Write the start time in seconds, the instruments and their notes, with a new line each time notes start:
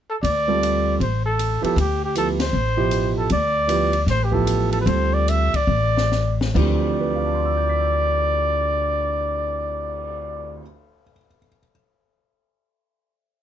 0.10 trumpet A4
0.23 upright bass D2, trumpet D5, ride
0.48 grand piano G3 C4 F4 A4
0.63 hi-hat pedal, ride
1.00 upright bass A1, trumpet C5, ride
1.26 trumpet A4
1.39 hi-hat pedal, ride
1.62 grand piano F3 B3 E4 G4, trumpet A4, muted upright bass stroke, ride
1.76 upright bass D2, trumpet G4, ride
2.04 trumpet G4
2.15 grand piano F3 B3 E4 G4, trumpet A4, hi-hat pedal, ride
2.40 trumpet C5, snare, ride
2.53 upright bass A1
2.77 grand piano B2 F3 E4 G4
2.91 hi-hat pedal, ride
3.18 trumpet A4
3.30 upright bass D2, trumpet D5, ride
3.67 grand piano F3 B3 E4 G4, hi-hat pedal, ride
3.93 ride
4.06 upright bass A1, trumpet C5, snare, ride
4.24 trumpet G4
4.31 grand piano F3 B3 E4 G4, trumpet A4, kick
4.47 hi-hat pedal, ride
4.72 trumpet A4, ride
4.81 trumpet B4
4.86 upright bass D2, grand piano G3 C4 F4 A4, trumpet C5, ride
5.14 trumpet D5
5.28 trumpet E5, hi-hat pedal, ride
5.54 trumpet D5, muted upright bass stroke, kick, ride
5.67 upright bass A1
5.97 snare
6.12 snare, hi-hat pedal
6.41 snare
6.54 grand piano D2 D3 E3 F3 C4 G4, upright bass D2, trumpet D5, kick, crash
6.85 cymbal swell
7.00 grand piano B4
7.08 grand piano D5
7.15 grand piano F5
7.25 grand piano A5
7.35 grand piano C6
7.45 grand piano E6
7.57 grand piano G6
7.70 grand piano B6